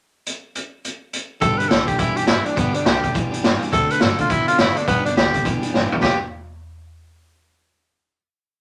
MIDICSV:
0, 0, Header, 1, 7, 480
1, 0, Start_track
1, 0, Key_signature, 1, "major"
1, 0, Tempo, 288323
1, 430, Time_signature, 4, 2, 24, 8
1, 14322, End_track
2, 0, Start_track
2, 0, Title_t, "Tenor saxophone"
2, 0, Program_c, 0, 66
2, 2351, Note_on_c, 0, 69, 105
2, 2630, Note_on_c, 0, 71, 92
2, 2655, Note_off_c, 0, 69, 0
2, 2812, Note_on_c, 0, 69, 93
2, 2836, Note_off_c, 0, 71, 0
2, 3122, Note_on_c, 0, 67, 87
2, 3147, Note_off_c, 0, 69, 0
2, 3315, Note_on_c, 0, 64, 81
2, 3340, Note_off_c, 0, 67, 0
2, 3605, Note_on_c, 0, 67, 97
2, 3630, Note_off_c, 0, 64, 0
2, 3779, Note_off_c, 0, 67, 0
2, 3789, Note_on_c, 0, 64, 88
2, 4091, Note_on_c, 0, 62, 93
2, 4116, Note_off_c, 0, 64, 0
2, 4293, Note_on_c, 0, 59, 100
2, 4318, Note_off_c, 0, 62, 0
2, 4571, Note_on_c, 0, 62, 84
2, 4596, Note_off_c, 0, 59, 0
2, 4756, Note_on_c, 0, 67, 90
2, 4781, Note_off_c, 0, 62, 0
2, 5226, Note_off_c, 0, 67, 0
2, 6197, Note_on_c, 0, 69, 114
2, 6512, Note_on_c, 0, 71, 100
2, 6537, Note_off_c, 0, 69, 0
2, 6695, Note_on_c, 0, 69, 96
2, 6720, Note_off_c, 0, 71, 0
2, 6975, Note_off_c, 0, 69, 0
2, 7002, Note_on_c, 0, 65, 101
2, 7173, Note_on_c, 0, 64, 99
2, 7198, Note_off_c, 0, 65, 0
2, 7445, Note_off_c, 0, 64, 0
2, 7455, Note_on_c, 0, 65, 109
2, 7651, Note_on_c, 0, 64, 96
2, 7676, Note_off_c, 0, 65, 0
2, 7951, Note_on_c, 0, 62, 91
2, 7976, Note_off_c, 0, 64, 0
2, 8110, Note_off_c, 0, 62, 0
2, 8120, Note_on_c, 0, 59, 114
2, 8405, Note_off_c, 0, 59, 0
2, 8418, Note_on_c, 0, 62, 90
2, 8594, Note_off_c, 0, 62, 0
2, 8611, Note_on_c, 0, 67, 93
2, 9068, Note_off_c, 0, 67, 0
2, 10012, Note_on_c, 0, 67, 92
2, 10296, Note_off_c, 0, 67, 0
2, 14322, End_track
3, 0, Start_track
3, 0, Title_t, "Steel-string acoustic guitar"
3, 0, Program_c, 1, 25
3, 2333, Note_on_c, 1, 43, 80
3, 2352, Note_on_c, 1, 50, 70
3, 2357, Note_on_c, 1, 55, 79
3, 2363, Note_on_c, 1, 59, 80
3, 2367, Note_on_c, 1, 62, 78
3, 2368, Note_on_c, 1, 67, 84
3, 2618, Note_off_c, 1, 67, 0
3, 2634, Note_off_c, 1, 62, 0
3, 2638, Note_on_c, 1, 67, 61
3, 2643, Note_off_c, 1, 43, 0
3, 2653, Note_off_c, 1, 50, 0
3, 2654, Note_off_c, 1, 59, 0
3, 2654, Note_on_c, 1, 62, 49
3, 2655, Note_off_c, 1, 55, 0
3, 2674, Note_on_c, 1, 59, 48
3, 2681, Note_on_c, 1, 55, 42
3, 2814, Note_off_c, 1, 55, 0
3, 2829, Note_off_c, 1, 59, 0
3, 2832, Note_off_c, 1, 67, 0
3, 2834, Note_on_c, 1, 55, 63
3, 2840, Note_off_c, 1, 62, 0
3, 2849, Note_on_c, 1, 59, 61
3, 2872, Note_on_c, 1, 62, 62
3, 2873, Note_on_c, 1, 67, 62
3, 3101, Note_off_c, 1, 67, 0
3, 3121, Note_on_c, 1, 67, 57
3, 3123, Note_off_c, 1, 62, 0
3, 3134, Note_off_c, 1, 55, 0
3, 3134, Note_off_c, 1, 59, 0
3, 3143, Note_on_c, 1, 62, 55
3, 3154, Note_on_c, 1, 59, 51
3, 3162, Note_on_c, 1, 55, 46
3, 3294, Note_off_c, 1, 55, 0
3, 3299, Note_off_c, 1, 59, 0
3, 3301, Note_on_c, 1, 43, 74
3, 3314, Note_off_c, 1, 67, 0
3, 3314, Note_on_c, 1, 55, 77
3, 3316, Note_on_c, 1, 50, 82
3, 3317, Note_off_c, 1, 62, 0
3, 3319, Note_on_c, 1, 59, 83
3, 3332, Note_on_c, 1, 67, 88
3, 3337, Note_on_c, 1, 62, 80
3, 3575, Note_off_c, 1, 67, 0
3, 3583, Note_off_c, 1, 62, 0
3, 3595, Note_on_c, 1, 67, 59
3, 3597, Note_off_c, 1, 59, 0
3, 3603, Note_on_c, 1, 62, 56
3, 3608, Note_off_c, 1, 43, 0
3, 3615, Note_off_c, 1, 55, 0
3, 3616, Note_off_c, 1, 50, 0
3, 3617, Note_on_c, 1, 59, 47
3, 3642, Note_on_c, 1, 55, 44
3, 3759, Note_off_c, 1, 55, 0
3, 3771, Note_off_c, 1, 59, 0
3, 3779, Note_on_c, 1, 55, 58
3, 3784, Note_off_c, 1, 62, 0
3, 3791, Note_on_c, 1, 59, 59
3, 3792, Note_off_c, 1, 67, 0
3, 3804, Note_on_c, 1, 62, 62
3, 3820, Note_on_c, 1, 67, 57
3, 4065, Note_off_c, 1, 67, 0
3, 4072, Note_off_c, 1, 62, 0
3, 4085, Note_on_c, 1, 67, 53
3, 4087, Note_off_c, 1, 55, 0
3, 4092, Note_on_c, 1, 62, 48
3, 4093, Note_off_c, 1, 59, 0
3, 4112, Note_on_c, 1, 59, 47
3, 4130, Note_on_c, 1, 55, 42
3, 4248, Note_off_c, 1, 55, 0
3, 4258, Note_off_c, 1, 59, 0
3, 4259, Note_off_c, 1, 62, 0
3, 4260, Note_off_c, 1, 67, 0
3, 4260, Note_on_c, 1, 43, 72
3, 4266, Note_on_c, 1, 50, 77
3, 4268, Note_on_c, 1, 55, 82
3, 4278, Note_on_c, 1, 59, 86
3, 4279, Note_on_c, 1, 62, 81
3, 4280, Note_on_c, 1, 67, 85
3, 4514, Note_off_c, 1, 67, 0
3, 4534, Note_on_c, 1, 67, 53
3, 4544, Note_off_c, 1, 62, 0
3, 4545, Note_off_c, 1, 59, 0
3, 4560, Note_off_c, 1, 55, 0
3, 4564, Note_on_c, 1, 62, 45
3, 4565, Note_on_c, 1, 59, 47
3, 4568, Note_off_c, 1, 43, 0
3, 4571, Note_off_c, 1, 50, 0
3, 4580, Note_on_c, 1, 55, 46
3, 4703, Note_off_c, 1, 55, 0
3, 4716, Note_off_c, 1, 59, 0
3, 4723, Note_on_c, 1, 55, 60
3, 4734, Note_off_c, 1, 62, 0
3, 4736, Note_on_c, 1, 59, 69
3, 4742, Note_off_c, 1, 67, 0
3, 4754, Note_on_c, 1, 62, 64
3, 4763, Note_on_c, 1, 67, 60
3, 5014, Note_off_c, 1, 67, 0
3, 5031, Note_off_c, 1, 62, 0
3, 5034, Note_on_c, 1, 67, 55
3, 5039, Note_off_c, 1, 55, 0
3, 5042, Note_off_c, 1, 59, 0
3, 5051, Note_on_c, 1, 62, 50
3, 5062, Note_on_c, 1, 59, 50
3, 5082, Note_on_c, 1, 55, 47
3, 5211, Note_off_c, 1, 55, 0
3, 5220, Note_off_c, 1, 62, 0
3, 5221, Note_off_c, 1, 59, 0
3, 5223, Note_on_c, 1, 43, 73
3, 5231, Note_on_c, 1, 55, 81
3, 5232, Note_off_c, 1, 67, 0
3, 5233, Note_on_c, 1, 50, 76
3, 5240, Note_on_c, 1, 62, 80
3, 5241, Note_on_c, 1, 59, 73
3, 5249, Note_on_c, 1, 67, 83
3, 5487, Note_off_c, 1, 67, 0
3, 5506, Note_off_c, 1, 62, 0
3, 5506, Note_on_c, 1, 67, 57
3, 5515, Note_off_c, 1, 59, 0
3, 5526, Note_on_c, 1, 62, 57
3, 5529, Note_off_c, 1, 43, 0
3, 5533, Note_off_c, 1, 55, 0
3, 5534, Note_off_c, 1, 50, 0
3, 5535, Note_on_c, 1, 59, 54
3, 5552, Note_on_c, 1, 55, 49
3, 5677, Note_off_c, 1, 55, 0
3, 5684, Note_off_c, 1, 59, 0
3, 5697, Note_on_c, 1, 55, 61
3, 5699, Note_off_c, 1, 62, 0
3, 5704, Note_on_c, 1, 59, 71
3, 5707, Note_off_c, 1, 67, 0
3, 5719, Note_on_c, 1, 62, 70
3, 5731, Note_on_c, 1, 67, 73
3, 5975, Note_off_c, 1, 67, 0
3, 5995, Note_off_c, 1, 62, 0
3, 5995, Note_on_c, 1, 67, 61
3, 6006, Note_off_c, 1, 55, 0
3, 6009, Note_off_c, 1, 59, 0
3, 6015, Note_on_c, 1, 62, 57
3, 6026, Note_on_c, 1, 59, 52
3, 6045, Note_on_c, 1, 55, 48
3, 6178, Note_on_c, 1, 50, 76
3, 6185, Note_off_c, 1, 55, 0
3, 6186, Note_off_c, 1, 59, 0
3, 6191, Note_off_c, 1, 67, 0
3, 6191, Note_on_c, 1, 54, 76
3, 6193, Note_on_c, 1, 60, 80
3, 6194, Note_off_c, 1, 62, 0
3, 6210, Note_on_c, 1, 69, 89
3, 6214, Note_on_c, 1, 62, 85
3, 6467, Note_off_c, 1, 69, 0
3, 6486, Note_off_c, 1, 50, 0
3, 6487, Note_on_c, 1, 69, 58
3, 6490, Note_off_c, 1, 62, 0
3, 6492, Note_off_c, 1, 54, 0
3, 6493, Note_off_c, 1, 60, 0
3, 6510, Note_on_c, 1, 62, 50
3, 6537, Note_on_c, 1, 60, 45
3, 6653, Note_on_c, 1, 54, 58
3, 6654, Note_off_c, 1, 60, 0
3, 6674, Note_on_c, 1, 60, 61
3, 6677, Note_off_c, 1, 62, 0
3, 6677, Note_off_c, 1, 69, 0
3, 6697, Note_on_c, 1, 62, 60
3, 6704, Note_on_c, 1, 69, 72
3, 6934, Note_off_c, 1, 69, 0
3, 6954, Note_on_c, 1, 69, 61
3, 6963, Note_off_c, 1, 54, 0
3, 6964, Note_off_c, 1, 62, 0
3, 6973, Note_off_c, 1, 60, 0
3, 6984, Note_on_c, 1, 62, 53
3, 7004, Note_on_c, 1, 60, 53
3, 7144, Note_off_c, 1, 60, 0
3, 7149, Note_off_c, 1, 62, 0
3, 7149, Note_off_c, 1, 69, 0
3, 7149, Note_on_c, 1, 50, 73
3, 7150, Note_on_c, 1, 54, 78
3, 7164, Note_on_c, 1, 60, 84
3, 7169, Note_on_c, 1, 62, 82
3, 7183, Note_on_c, 1, 69, 77
3, 7438, Note_off_c, 1, 69, 0
3, 7450, Note_off_c, 1, 50, 0
3, 7450, Note_off_c, 1, 54, 0
3, 7457, Note_off_c, 1, 60, 0
3, 7458, Note_on_c, 1, 69, 58
3, 7460, Note_off_c, 1, 62, 0
3, 7484, Note_on_c, 1, 62, 55
3, 7500, Note_on_c, 1, 60, 49
3, 7634, Note_on_c, 1, 54, 59
3, 7640, Note_off_c, 1, 60, 0
3, 7641, Note_off_c, 1, 69, 0
3, 7643, Note_off_c, 1, 62, 0
3, 7660, Note_on_c, 1, 60, 68
3, 7663, Note_on_c, 1, 62, 69
3, 7680, Note_on_c, 1, 69, 67
3, 7886, Note_off_c, 1, 69, 0
3, 7901, Note_off_c, 1, 62, 0
3, 7906, Note_on_c, 1, 69, 54
3, 7921, Note_on_c, 1, 62, 52
3, 7928, Note_off_c, 1, 60, 0
3, 7931, Note_off_c, 1, 54, 0
3, 7948, Note_on_c, 1, 60, 43
3, 8101, Note_on_c, 1, 43, 78
3, 8104, Note_off_c, 1, 69, 0
3, 8112, Note_off_c, 1, 62, 0
3, 8117, Note_on_c, 1, 50, 69
3, 8118, Note_off_c, 1, 60, 0
3, 8118, Note_on_c, 1, 55, 75
3, 8125, Note_on_c, 1, 59, 81
3, 8130, Note_on_c, 1, 62, 84
3, 8134, Note_on_c, 1, 67, 88
3, 8388, Note_off_c, 1, 67, 0
3, 8405, Note_off_c, 1, 43, 0
3, 8405, Note_off_c, 1, 62, 0
3, 8408, Note_on_c, 1, 67, 54
3, 8412, Note_off_c, 1, 50, 0
3, 8413, Note_off_c, 1, 55, 0
3, 8416, Note_off_c, 1, 59, 0
3, 8425, Note_on_c, 1, 62, 51
3, 8441, Note_on_c, 1, 59, 46
3, 8445, Note_on_c, 1, 55, 42
3, 8569, Note_off_c, 1, 55, 0
3, 8585, Note_off_c, 1, 59, 0
3, 8589, Note_on_c, 1, 55, 60
3, 8594, Note_off_c, 1, 67, 0
3, 8603, Note_off_c, 1, 62, 0
3, 8605, Note_on_c, 1, 59, 59
3, 8620, Note_on_c, 1, 62, 58
3, 8637, Note_on_c, 1, 67, 64
3, 8858, Note_off_c, 1, 67, 0
3, 8873, Note_off_c, 1, 62, 0
3, 8878, Note_on_c, 1, 67, 56
3, 8887, Note_off_c, 1, 55, 0
3, 8893, Note_on_c, 1, 62, 56
3, 8895, Note_off_c, 1, 59, 0
3, 8919, Note_on_c, 1, 59, 46
3, 8924, Note_on_c, 1, 55, 51
3, 9055, Note_off_c, 1, 55, 0
3, 9068, Note_off_c, 1, 59, 0
3, 9068, Note_off_c, 1, 62, 0
3, 9069, Note_off_c, 1, 67, 0
3, 9073, Note_on_c, 1, 43, 80
3, 9074, Note_on_c, 1, 50, 78
3, 9075, Note_on_c, 1, 55, 74
3, 9088, Note_on_c, 1, 59, 76
3, 9088, Note_on_c, 1, 62, 79
3, 9098, Note_on_c, 1, 67, 86
3, 9326, Note_off_c, 1, 67, 0
3, 9338, Note_off_c, 1, 62, 0
3, 9346, Note_on_c, 1, 67, 58
3, 9352, Note_off_c, 1, 59, 0
3, 9358, Note_on_c, 1, 62, 61
3, 9369, Note_off_c, 1, 43, 0
3, 9370, Note_off_c, 1, 50, 0
3, 9370, Note_off_c, 1, 55, 0
3, 9372, Note_on_c, 1, 59, 54
3, 9395, Note_on_c, 1, 55, 53
3, 9511, Note_off_c, 1, 55, 0
3, 9531, Note_on_c, 1, 55, 67
3, 9534, Note_off_c, 1, 59, 0
3, 9542, Note_off_c, 1, 67, 0
3, 9548, Note_off_c, 1, 62, 0
3, 9554, Note_on_c, 1, 59, 66
3, 9565, Note_on_c, 1, 62, 67
3, 9573, Note_on_c, 1, 67, 72
3, 9829, Note_off_c, 1, 67, 0
3, 9834, Note_off_c, 1, 62, 0
3, 9837, Note_off_c, 1, 55, 0
3, 9849, Note_off_c, 1, 59, 0
3, 9849, Note_on_c, 1, 67, 54
3, 9854, Note_on_c, 1, 62, 59
3, 9868, Note_on_c, 1, 59, 49
3, 9893, Note_on_c, 1, 55, 53
3, 10012, Note_off_c, 1, 55, 0
3, 10020, Note_on_c, 1, 43, 84
3, 10028, Note_off_c, 1, 59, 0
3, 10028, Note_on_c, 1, 50, 88
3, 10032, Note_on_c, 1, 55, 89
3, 10033, Note_off_c, 1, 67, 0
3, 10035, Note_off_c, 1, 62, 0
3, 10048, Note_on_c, 1, 59, 87
3, 10054, Note_on_c, 1, 62, 84
3, 10064, Note_on_c, 1, 67, 88
3, 10262, Note_off_c, 1, 43, 0
3, 10266, Note_off_c, 1, 50, 0
3, 10268, Note_off_c, 1, 55, 0
3, 10276, Note_off_c, 1, 59, 0
3, 10279, Note_off_c, 1, 62, 0
3, 10284, Note_off_c, 1, 67, 0
3, 14322, End_track
4, 0, Start_track
4, 0, Title_t, "Clean electric guitar"
4, 0, Program_c, 2, 27
4, 2352, Note_on_c, 2, 43, 85
4, 2353, Note_on_c, 2, 50, 91
4, 2814, Note_off_c, 2, 43, 0
4, 2821, Note_off_c, 2, 50, 0
4, 2834, Note_on_c, 2, 43, 88
4, 2841, Note_on_c, 2, 50, 91
4, 3282, Note_off_c, 2, 43, 0
4, 3285, Note_off_c, 2, 50, 0
4, 3336, Note_on_c, 2, 43, 92
4, 3341, Note_on_c, 2, 52, 101
4, 3783, Note_off_c, 2, 43, 0
4, 3790, Note_off_c, 2, 52, 0
4, 3803, Note_on_c, 2, 43, 90
4, 3810, Note_on_c, 2, 52, 91
4, 4247, Note_off_c, 2, 43, 0
4, 4251, Note_off_c, 2, 52, 0
4, 4293, Note_on_c, 2, 43, 88
4, 4301, Note_on_c, 2, 50, 94
4, 4756, Note_off_c, 2, 43, 0
4, 4760, Note_off_c, 2, 50, 0
4, 4776, Note_on_c, 2, 43, 96
4, 4780, Note_on_c, 2, 50, 101
4, 5213, Note_off_c, 2, 43, 0
4, 5215, Note_off_c, 2, 50, 0
4, 5239, Note_on_c, 2, 43, 98
4, 5247, Note_on_c, 2, 52, 99
4, 5698, Note_off_c, 2, 43, 0
4, 5699, Note_off_c, 2, 52, 0
4, 5718, Note_on_c, 2, 43, 96
4, 5719, Note_on_c, 2, 52, 103
4, 6164, Note_off_c, 2, 43, 0
4, 6164, Note_off_c, 2, 52, 0
4, 6192, Note_on_c, 2, 50, 90
4, 6198, Note_on_c, 2, 57, 91
4, 6657, Note_off_c, 2, 50, 0
4, 6663, Note_off_c, 2, 57, 0
4, 6677, Note_on_c, 2, 50, 90
4, 6683, Note_on_c, 2, 57, 92
4, 7122, Note_off_c, 2, 50, 0
4, 7125, Note_off_c, 2, 57, 0
4, 7164, Note_on_c, 2, 59, 94
4, 7165, Note_on_c, 2, 50, 81
4, 7623, Note_off_c, 2, 50, 0
4, 7640, Note_off_c, 2, 59, 0
4, 7643, Note_on_c, 2, 50, 81
4, 7660, Note_on_c, 2, 59, 98
4, 8083, Note_off_c, 2, 50, 0
4, 8092, Note_off_c, 2, 59, 0
4, 8116, Note_on_c, 2, 43, 83
4, 8125, Note_on_c, 2, 50, 100
4, 8573, Note_off_c, 2, 50, 0
4, 8577, Note_off_c, 2, 43, 0
4, 8593, Note_on_c, 2, 50, 100
4, 8597, Note_on_c, 2, 43, 86
4, 9036, Note_off_c, 2, 50, 0
4, 9039, Note_off_c, 2, 43, 0
4, 9067, Note_on_c, 2, 43, 87
4, 9074, Note_on_c, 2, 52, 95
4, 9535, Note_off_c, 2, 43, 0
4, 9544, Note_off_c, 2, 52, 0
4, 9555, Note_on_c, 2, 43, 83
4, 9564, Note_on_c, 2, 52, 97
4, 9993, Note_off_c, 2, 52, 0
4, 9996, Note_off_c, 2, 43, 0
4, 9999, Note_on_c, 2, 55, 91
4, 10016, Note_on_c, 2, 59, 91
4, 10020, Note_on_c, 2, 62, 107
4, 10029, Note_on_c, 2, 67, 98
4, 10034, Note_on_c, 2, 71, 103
4, 10252, Note_off_c, 2, 55, 0
4, 10260, Note_off_c, 2, 59, 0
4, 10262, Note_off_c, 2, 62, 0
4, 10267, Note_off_c, 2, 67, 0
4, 10269, Note_off_c, 2, 71, 0
4, 14322, End_track
5, 0, Start_track
5, 0, Title_t, "Upright bass"
5, 0, Program_c, 3, 32
5, 2356, Note_on_c, 3, 31, 90
5, 2576, Note_off_c, 3, 31, 0
5, 2835, Note_on_c, 3, 36, 89
5, 3056, Note_off_c, 3, 36, 0
5, 3601, Note_on_c, 3, 35, 80
5, 3744, Note_off_c, 3, 35, 0
5, 3793, Note_on_c, 3, 31, 91
5, 4015, Note_off_c, 3, 31, 0
5, 4279, Note_on_c, 3, 31, 99
5, 4499, Note_off_c, 3, 31, 0
5, 4763, Note_on_c, 3, 36, 87
5, 4982, Note_off_c, 3, 36, 0
5, 5549, Note_on_c, 3, 35, 81
5, 5681, Note_off_c, 3, 35, 0
5, 5731, Note_on_c, 3, 31, 91
5, 5946, Note_off_c, 3, 31, 0
5, 6210, Note_on_c, 3, 38, 96
5, 6425, Note_off_c, 3, 38, 0
5, 6693, Note_on_c, 3, 43, 93
5, 6907, Note_off_c, 3, 43, 0
5, 7160, Note_on_c, 3, 45, 93
5, 7378, Note_off_c, 3, 45, 0
5, 7456, Note_on_c, 3, 42, 86
5, 7591, Note_off_c, 3, 42, 0
5, 7645, Note_on_c, 3, 30, 95
5, 7860, Note_off_c, 3, 30, 0
5, 8120, Note_on_c, 3, 31, 93
5, 8337, Note_off_c, 3, 31, 0
5, 8591, Note_on_c, 3, 36, 84
5, 8810, Note_off_c, 3, 36, 0
5, 9365, Note_on_c, 3, 35, 78
5, 9503, Note_off_c, 3, 35, 0
5, 9566, Note_on_c, 3, 31, 93
5, 9779, Note_off_c, 3, 31, 0
5, 14322, End_track
6, 0, Start_track
6, 0, Title_t, "Muted upright bass strokes"
6, 4092, Note_on_c, 9, 29, 70
6, 4258, Note_off_c, 9, 29, 0
6, 6499, Note_on_c, 9, 29, 71
6, 6666, Note_off_c, 9, 29, 0
6, 8415, Note_on_c, 9, 29, 70
6, 8582, Note_off_c, 9, 29, 0
6, 9854, Note_on_c, 9, 29, 68
6, 10021, Note_off_c, 9, 29, 0
6, 14322, End_track
7, 0, Start_track
7, 0, Title_t, "Drums"
7, 438, Note_on_c, 9, 42, 59
7, 604, Note_off_c, 9, 42, 0
7, 917, Note_on_c, 9, 42, 51
7, 1083, Note_off_c, 9, 42, 0
7, 1404, Note_on_c, 9, 42, 57
7, 1571, Note_off_c, 9, 42, 0
7, 1883, Note_on_c, 9, 42, 62
7, 2049, Note_off_c, 9, 42, 0
7, 2355, Note_on_c, 9, 42, 80
7, 2357, Note_on_c, 9, 36, 107
7, 2521, Note_off_c, 9, 42, 0
7, 2523, Note_off_c, 9, 36, 0
7, 2660, Note_on_c, 9, 42, 63
7, 2826, Note_off_c, 9, 42, 0
7, 2841, Note_on_c, 9, 38, 105
7, 2841, Note_on_c, 9, 42, 77
7, 3007, Note_off_c, 9, 38, 0
7, 3007, Note_off_c, 9, 42, 0
7, 3122, Note_on_c, 9, 42, 72
7, 3130, Note_on_c, 9, 36, 84
7, 3288, Note_off_c, 9, 42, 0
7, 3297, Note_off_c, 9, 36, 0
7, 3307, Note_on_c, 9, 42, 95
7, 3316, Note_on_c, 9, 36, 116
7, 3473, Note_off_c, 9, 42, 0
7, 3482, Note_off_c, 9, 36, 0
7, 3607, Note_on_c, 9, 42, 65
7, 3774, Note_off_c, 9, 42, 0
7, 3782, Note_on_c, 9, 38, 122
7, 3782, Note_on_c, 9, 42, 89
7, 3949, Note_off_c, 9, 38, 0
7, 3949, Note_off_c, 9, 42, 0
7, 4089, Note_on_c, 9, 42, 62
7, 4256, Note_off_c, 9, 42, 0
7, 4281, Note_on_c, 9, 36, 105
7, 4281, Note_on_c, 9, 42, 84
7, 4448, Note_off_c, 9, 36, 0
7, 4448, Note_off_c, 9, 42, 0
7, 4565, Note_on_c, 9, 42, 65
7, 4732, Note_off_c, 9, 42, 0
7, 4759, Note_on_c, 9, 38, 109
7, 4759, Note_on_c, 9, 42, 80
7, 4925, Note_off_c, 9, 38, 0
7, 4925, Note_off_c, 9, 42, 0
7, 5058, Note_on_c, 9, 36, 80
7, 5060, Note_on_c, 9, 42, 61
7, 5225, Note_off_c, 9, 36, 0
7, 5227, Note_off_c, 9, 42, 0
7, 5245, Note_on_c, 9, 42, 82
7, 5247, Note_on_c, 9, 36, 113
7, 5412, Note_off_c, 9, 42, 0
7, 5414, Note_off_c, 9, 36, 0
7, 5553, Note_on_c, 9, 42, 61
7, 5719, Note_off_c, 9, 42, 0
7, 5730, Note_on_c, 9, 38, 122
7, 5730, Note_on_c, 9, 42, 84
7, 5897, Note_off_c, 9, 38, 0
7, 5897, Note_off_c, 9, 42, 0
7, 6034, Note_on_c, 9, 42, 56
7, 6200, Note_off_c, 9, 42, 0
7, 6202, Note_on_c, 9, 42, 80
7, 6206, Note_on_c, 9, 36, 107
7, 6368, Note_off_c, 9, 42, 0
7, 6372, Note_off_c, 9, 36, 0
7, 6497, Note_on_c, 9, 42, 66
7, 6664, Note_off_c, 9, 42, 0
7, 6667, Note_on_c, 9, 38, 112
7, 6667, Note_on_c, 9, 42, 75
7, 6833, Note_off_c, 9, 38, 0
7, 6833, Note_off_c, 9, 42, 0
7, 6965, Note_on_c, 9, 42, 67
7, 6975, Note_on_c, 9, 36, 76
7, 7132, Note_off_c, 9, 42, 0
7, 7141, Note_off_c, 9, 36, 0
7, 7156, Note_on_c, 9, 42, 83
7, 7160, Note_on_c, 9, 36, 119
7, 7323, Note_off_c, 9, 42, 0
7, 7327, Note_off_c, 9, 36, 0
7, 7454, Note_on_c, 9, 42, 68
7, 7620, Note_off_c, 9, 42, 0
7, 7631, Note_on_c, 9, 38, 118
7, 7631, Note_on_c, 9, 42, 90
7, 7797, Note_off_c, 9, 38, 0
7, 7797, Note_off_c, 9, 42, 0
7, 7935, Note_on_c, 9, 42, 61
7, 8101, Note_off_c, 9, 42, 0
7, 8119, Note_on_c, 9, 42, 90
7, 8120, Note_on_c, 9, 36, 112
7, 8285, Note_off_c, 9, 42, 0
7, 8286, Note_off_c, 9, 36, 0
7, 8424, Note_on_c, 9, 42, 69
7, 8590, Note_off_c, 9, 42, 0
7, 8610, Note_on_c, 9, 38, 99
7, 8610, Note_on_c, 9, 42, 72
7, 8777, Note_off_c, 9, 38, 0
7, 8777, Note_off_c, 9, 42, 0
7, 8894, Note_on_c, 9, 36, 76
7, 8895, Note_on_c, 9, 42, 65
7, 9060, Note_off_c, 9, 36, 0
7, 9062, Note_off_c, 9, 42, 0
7, 9078, Note_on_c, 9, 36, 114
7, 9082, Note_on_c, 9, 42, 83
7, 9245, Note_off_c, 9, 36, 0
7, 9248, Note_off_c, 9, 42, 0
7, 9367, Note_on_c, 9, 42, 61
7, 9534, Note_off_c, 9, 42, 0
7, 9557, Note_on_c, 9, 38, 68
7, 9723, Note_off_c, 9, 38, 0
7, 9857, Note_on_c, 9, 43, 77
7, 10024, Note_off_c, 9, 43, 0
7, 10034, Note_on_c, 9, 36, 96
7, 10036, Note_on_c, 9, 38, 98
7, 10200, Note_off_c, 9, 36, 0
7, 10202, Note_off_c, 9, 38, 0
7, 14322, End_track
0, 0, End_of_file